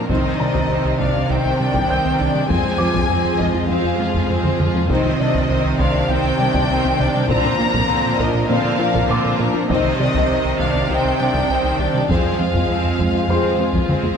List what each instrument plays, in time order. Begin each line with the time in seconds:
Already playing: felt piano G#5
0.08 analog synth bass C2, cello section C3, synth arpeggio sound C3, viola section D#3 C4, analog synth pad D#3 C4 C5, french horn section C4 D#4, violin section D#4 C5 D#5, taiko
0.25 analog synth bass C2, synth arpeggio sound D#3
0.38 analog synth bass C3, viola section D#3 C4, synth arpeggio sound G3, violin section D4 D5, felt piano A#5
0.55 analog synth bass C2, synth arpeggio sound C3, taiko
0.68 analog synth bass C2, viola section D#3 C4, violin section D#4 C5
0.85 analog synth bass C2
0.98 analog synth bass C2, synth arpeggio sound C3, viola section D#3 D4, violin section D4 D5 F5, taiko
1.14 analog synth bass C2, synth arpeggio sound C4
1.29 analog synth bass C2, synth arpeggio sound C3, viola section D#3 C4, french horn section C4 D#4, violin section D#4 C5 G5
1.45 analog synth bass C2
1.59 analog synth bass C3, viola section D#3 D4, synth arpeggio sound G3, violin section D4 D5
1.74 analog synth bass C2, synth arpeggio sound C3, taiko
1.90 analog synth bass C2, viola section D#3 C4, violin section D#4 C5, felt piano G6
2.04 analog synth bass C2, synth arpeggio sound C4
2.19 analog synth bass C2, synth arpeggio sound C3, viola section D#3 D4, violin section D4 D5
2.35 analog synth bass C3, synth arpeggio sound G3
2.49 cello section F2, analog synth bass F2, synth arpeggio sound F3, analog synth pad F3 F4, viola section G#3 C4, french horn section C4 F4, violin section G#4 C5 G#5, taiko
2.64 analog synth bass F2, synth arpeggio sound G#3
2.78 viola section F3 G#3, analog synth bass F3, synth arpeggio sound C4, violin section F4 G#4, felt piano D6
2.94 analog synth bass F2, synth arpeggio sound F3, taiko
3.09 analog synth bass F2, viola section G#3 C4, violin section G#4 C5
3.25 analog synth bass F2
3.39 analog synth bass F2, viola section F3 G#3, synth arpeggio sound F3, violin section F4 G#4 D#5, taiko
3.55 analog synth bass F2, synth arpeggio sound F4
3.67 analog synth bass F2, synth arpeggio sound F3, viola section G#3 C4, french horn section C4 F4, violin section G#4 C5 F5
3.85 analog synth bass F2
3.98 viola section F3 G#3, analog synth bass F3, synth arpeggio sound C4, violin section F4 G#4
4.14 analog synth bass F2, synth arpeggio sound F3, taiko
4.29 analog synth bass F2, viola section G#3 C4, violin section G#4 C5, taiko low-mid
4.44 analog synth bass F2, synth arpeggio sound F4, taiko mid
4.59 analog synth bass F2, viola section F3 G#3, synth arpeggio sound F3, violin section F4 G#4, taiko mid
4.75 analog synth bass F3, synth arpeggio sound C4, taiko low
4.89 analog synth bass C2, synth arpeggio sound C3, cello section C3, viola section D#3 C4, analog synth pad D#3 C4 C5, french horn section C4 D#4, violin section D#4 C5 D#5, taiko
5.05 analog synth bass C2, synth arpeggio sound D#3
5.19 analog synth bass C3, viola section D#3 C4, synth arpeggio sound G3, violin section D4 D5
5.35 analog synth bass C2, synth arpeggio sound C3, taiko
5.49 analog synth bass C2, viola section D#3 C4, violin section D#4 C5
5.65 analog synth bass C2
5.79 analog synth bass C2, synth arpeggio sound C3, viola section D#3 D4, violin section D4 D5 F5, felt piano C5 C6, taiko
5.94 analog synth bass C2, synth arpeggio sound C4
6.09 analog synth bass C2, synth arpeggio sound C3, viola section D#3 C4, french horn section C4 D#4, violin section D#4 C5 G5
6.23 analog synth bass C2
6.39 analog synth bass C3, viola section D#3 D4, synth arpeggio sound G3, violin section D4 D5
6.54 analog synth bass C2, synth arpeggio sound C3, taiko
6.70 analog synth bass C2, viola section D#3 C4, violin section D#4 C5
6.85 analog synth bass C2, synth arpeggio sound C4
6.99 analog synth bass C2, synth arpeggio sound C3, viola section D#3 D4, violin section D4 D5
7.14 analog synth bass C3, synth arpeggio sound G3
7.29 analog synth bass A#2, cello section A#2, viola section D3 C4, analog synth pad F3, synth arpeggio sound A#3, french horn section C4 D4, violin section F4 C5 A#5, taiko
7.45 analog synth bass A#2, synth arpeggio sound D4
7.59 viola section F3 A#3, analog synth bass A#3, violin section D4 A#4, synth arpeggio sound F4
7.74 analog synth bass A#2, synth arpeggio sound A#3, taiko
7.89 analog synth bass A#2, viola section D3 C4, violin section F4 C5
8.05 analog synth bass A#2
8.19 analog synth bass A#2, viola section F3 A#3, synth arpeggio sound A#3, violin section D4 A#4 D#5, taiko
8.35 analog synth bass A#2, synth arpeggio sound A#4
8.49 analog synth bass A#2, viola section D3 C4, synth arpeggio sound A#3, french horn section C4 D4, violin section F4 C5 F5
8.64 analog synth bass A#2
8.79 viola section F3 A#3, analog synth bass A#3, violin section D4 A#4, synth arpeggio sound F4
8.94 analog synth bass A#2, synth arpeggio sound A#3, taiko
9.09 analog synth bass A#2, viola section D3 C4, violin section F4 C5, felt piano D6
9.24 analog synth bass A#2, synth arpeggio sound A#4
9.38 analog synth bass A#2, viola section F3 A#3, synth arpeggio sound A#3, violin section D4 A#4
9.54 analog synth bass A#3, synth arpeggio sound F4
9.69 analog synth bass C2, synth arpeggio sound C3, cello section C3, viola section D#3 C4, analog synth pad D#3 C4 C5, french horn section C4 D#4, violin section D#4 C5 D#5, taiko
9.84 analog synth bass C2, synth arpeggio sound D#3
10.00 analog synth bass C3, viola section D#3 C4, synth arpeggio sound G3, violin section D4 D5
10.14 analog synth bass C2, synth arpeggio sound C3, taiko
10.29 analog synth bass C2, viola section D#3 C4, violin section D#4 C5
10.45 analog synth bass C2
10.59 analog synth bass C2, synth arpeggio sound C3, viola section D#3 D4, violin section D4 D5 F5, taiko
10.75 analog synth bass C2, synth arpeggio sound C4
10.89 analog synth bass C2, synth arpeggio sound C3, viola section D#3 C4, french horn section C4 D#4, violin section D#4 C5 G5
11.05 analog synth bass C2
11.19 analog synth bass C3, viola section D#3 D4, synth arpeggio sound G3, violin section D4 D5
11.34 analog synth bass C2, synth arpeggio sound C3, taiko
11.49 analog synth bass C2, viola section D#3 C4, violin section D#4 C5
11.64 analog synth bass C2, synth arpeggio sound C4
11.79 analog synth bass C2, synth arpeggio sound C3, viola section D#3 D4, violin section D4 D5
11.94 analog synth bass C3, synth arpeggio sound G3
12.09 analog synth bass F2, cello section F2, viola section F3 C4, synth arpeggio sound F3, analog synth pad G#3 F4, french horn section C4 G#4, violin section G#4 C5 F5, taiko
12.25 analog synth bass F2, synth arpeggio sound G#3
12.39 analog synth bass F3, viola section G#3, synth arpeggio sound C4, violin section F4 G#4
12.54 analog synth bass F2, synth arpeggio sound F3, taiko
12.69 analog synth bass F2, viola section F3 C4, violin section G#4 C5
12.84 analog synth bass F2
12.99 analog synth bass F2, synth arpeggio sound F3, viola section G#3, violin section F4 G#4, taiko
13.14 analog synth bass F2, synth arpeggio sound F4
13.29 analog synth bass F2, viola section F3 C4, synth arpeggio sound F3, french horn section C4 G#4, violin section G#4 C5, felt piano C5 C6
13.44 analog synth bass F2
13.58 analog synth bass F3, viola section G#3, synth arpeggio sound C4, violin section F4 G#4
13.73 analog synth bass F2, synth arpeggio sound F3, taiko
13.88 analog synth bass F2, viola section F3 C4, violin section G#4 C5, taiko mid
14.03 analog synth bass F2, synth arpeggio sound F4, taiko high